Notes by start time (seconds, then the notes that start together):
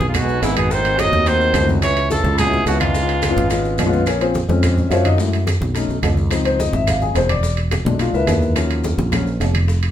0.00 B1, high conga, maracas
0.07 G#2 F4
0.14 B2 F#4, high bongo, high conga, low conga, high timbale, claves, maracas
0.21 G#3 B3 D#4 G#4
0.28 high bongo, high conga, maracas
0.41 G#1 G#2 G#3 B3 D#4 E4 G#4, high bongo, low bongo, high timbale, low timbale, maracas
0.56 B2 G#3 B3 D#4 F#4 G#4, high bongo, high conga, high timbale, claves, maracas
0.70 D#3 C5, high bongo, high conga, maracas
0.77 A3 C4 D#4 F#4
0.85 high bongo, high conga, high timbale, maracas
0.97 F#3 D#5, high bongo, high conga, high timbale, low timbale, claves, maracas
1.04 A3 C4 D#4 F#4
1.12 D#2, high conga, maracas
1.26 D#3 A3 C4 D#4 F#4 C5, high bongo, high conga, high timbale, maracas
1.40 high bongo, maracas
1.54 C#2, high bongo, low bongo, high conga, high timbale, low timbale, claves, maracas
1.61 A3 C4 D#4 F#4
1.68 high bongo, high conga, maracas
1.81 E3 G#3 B3 C#4 E4 C#5, high bongo, high conga, high timbale, claves, maracas
1.96 high bongo, high conga, high timbale, maracas
2.10 C#3 A4, high bongo, high conga, low timbale, maracas
2.24 C#2, high conga, maracas
2.38 B2 G#4, high bongo, high conga, low conga, high timbale, claves, maracas
2.45 G#3 B3 C#4 E4
2.52 high bongo, high conga, low conga, maracas
2.66 C#2 B2 G#3 B3 C#4 E4 F#4, high bongo, low bongo, high timbale, low timbale, maracas
2.80 G#2 G#3 B3 C#4 E4 F4, high bongo, high conga, high timbale, claves, maracas
2.95 high bongo, high conga, maracas
3.01 G#3 B3 C#4 F4
3.09 high bongo, high conga, high timbale, maracas
3.22 high bongo, high conga, high timbale, low timbale, claves, maracas
3.29 G#3 B3 C#4 F4
3.37 G#1, high conga, maracas
3.50 G#3 B3 C#4 F4, high bongo, high conga, high timbale, maracas
3.64 high bongo, high conga, maracas
3.78 A#1, high bongo, low bongo, high conga, high timbale, low timbale, claves, maracas
3.85 G#3 B3 C#4 F4
3.92 high bongo, high conga, maracas
4.06 C#4 G#4 A#4 C#5, high bongo, high conga, high timbale, claves, maracas
4.21 C4 F4 G#4 C5, high bongo, high conga, high timbale, maracas
4.34 high bongo, high conga, low timbale, maracas
4.48 F2 G#3 C4 C#4, high conga, maracas
4.63 high bongo, high conga, low conga, high timbale, claves, maracas
4.77 high bongo, high conga, low conga, maracas
4.87 F#2 E5, high bongo, low bongo, maracas
4.91 F4 C5 C#5 F5, high conga, high timbale, low timbale
5.04 D#4 D#5, high bongo, high conga, high timbale, claves, maracas
5.18 G#3 A3 E4, high bongo, maracas
5.32 high bongo, high timbale, maracas
5.47 high bongo, high conga, high timbale, low timbale, claves, maracas
5.61 B1, high conga, maracas
5.75 A3 C#4 D#4, high bongo, high conga, high timbale, maracas
5.89 B1, high bongo, high conga, maracas
6.03 C#2, high bongo, low bongo, high conga, high timbale, low timbale, claves, maracas
6.17 high bongo, high conga, maracas
6.31 F3 C4 D#4, high bongo, high timbale, claves, maracas
6.45 C5, high bongo, high conga, high timbale, maracas
6.59 D#5, high bongo, high conga, low timbale, maracas
6.73 G#1 E5, high conga, maracas
6.87 F5, high bongo, high conga, low conga, high timbale, claves, maracas
7.01 G#4, high bongo, high conga, low conga, maracas
7.15 E1 C5, high bongo, low bongo, high timbale, low timbale, maracas
7.29 D5, high bongo, high conga, high timbale, claves, maracas
7.43 high bongo, high conga, maracas
7.57 high bongo, high conga, high timbale, maracas
7.71 high bongo, high conga, high timbale, low timbale, claves, maracas
7.85 B1 A#2 G#3 D4, high conga, maracas
7.99 F4 F5, high bongo, high conga, high timbale, maracas
8.14 C#2 E4 A#4 B4 E5, high bongo, high conga, maracas
8.27 D#2, high bongo, low bongo, high conga, high timbale, low timbale, claves, maracas
8.42 high bongo, high conga, maracas
8.56 F3 F#3 C#4, high bongo, high timbale, claves, maracas
8.70 high bongo, high conga, high timbale, maracas
8.84 high bongo, high conga, low timbale, maracas
8.98 A#1, high conga, maracas
9.12 F3 F#3 C#4, high bongo, high conga, low conga, high timbale, claves, maracas
9.26 high bongo, high conga, maracas
9.40 F1, high bongo, low bongo, high timbale, low timbale, maracas
9.54 high bongo, high conga, high timbale, claves, maracas
9.68 high bongo, high conga, maracas
9.83 high bongo, high conga, high timbale, maracas